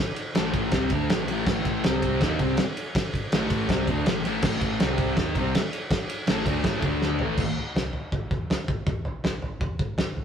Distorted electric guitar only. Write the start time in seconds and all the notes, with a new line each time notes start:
0.35 A2 E3 A3
0.73 C3 G3 C4
0.92 D3 A3 D4
1.12 A2 E3
1.30 A2 E3 A3
1.48 A2 E3 A3
1.85 C3 G3 C4
2.21 D#3 A#3 D#4
2.40 C3 G3 C4
3.34 A2 E3 A3
3.69 C3 G3 C4
3.89 D3 A3 D4
4.08 A2 E3
4.26 A2 E3 A3
4.45 A2 E3 A3
4.81 C3 G3 C4
5.18 D#3 A#3 D#4
5.38 C3 G3 C4
6.28 A2 E3 A3
6.47 D3 A3 D4
6.66 A2 E3 A3
6.85 D3 A3 D4
7.22 A2 E3 A3